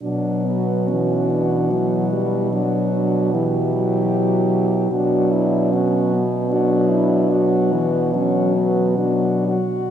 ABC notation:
X:1
M:3/4
L:1/8
Q:1/4=74
K:Bm
V:1 name="French horn"
F6 | F2 G4 | F E F z F E | F2 F2 F F |]
V:2 name="French horn"
D B, C D E2 | D D E4 | D2 C B, D2- | D z C B, D z |]
V:3 name="French horn" clef=bass
F,2 E,2 F, G, | F,2 E, F,3 | F,3 z F,2 | F, E, F,2 F, z |]
V:4 name="French horn" clef=bass
B,,6- | B,,6 | B,,6- | B,,4- B,, z |]